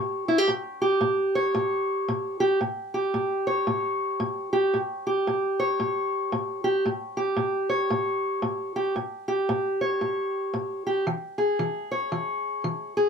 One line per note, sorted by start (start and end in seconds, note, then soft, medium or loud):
0.00 0.45 A2 medium
0.00 0.28 G4 medium
0.00 0.85 C#5 medium
0.28 0.38 E4 medium
0.38 0.49 G4 medium
0.48 0.97 A2 medium
0.82 2.39 G4 medium
1.01 1.50 A2 medium
1.35 2.59 C#5 medium
1.55 2.04 A2 medium
2.08 2.57 A2 medium
2.40 2.59 G4 medium
2.61 3.10 A2 medium
2.94 4.52 G4 medium
3.14 3.63 A2 medium
3.47 5.10 C#5 medium
3.67 4.16 A2 medium
4.20 4.69 A2 medium
4.53 4.77 G4 medium
4.74 5.22 A2 medium
5.07 6.64 G4 medium
5.27 5.75 A2 medium
5.60 7.20 C#5 medium
5.80 6.28 A2 medium
6.32 6.81 A2 medium
6.64 6.89 G4 medium
6.86 7.34 A2 medium
7.17 8.75 G4 medium
7.36 7.86 A2 medium
7.69 8.94 C#5 medium
7.90 8.39 A2 medium
8.42 8.91 A2 medium
8.76 8.94 G4 medium
8.96 9.45 A2 medium
9.28 10.85 G4 medium
9.49 9.98 A2 medium
9.81 11.05 C#5 medium
10.01 10.50 A2 medium
10.54 11.03 A2 medium
10.87 11.05 G4 medium
11.07 11.56 E3 medium
11.38 12.96 G#4 medium
11.59 12.08 E3 medium
11.92 13.09 C#5 medium
12.12 12.61 E3 medium
12.64 13.09 E3 medium
12.97 13.09 G#4 medium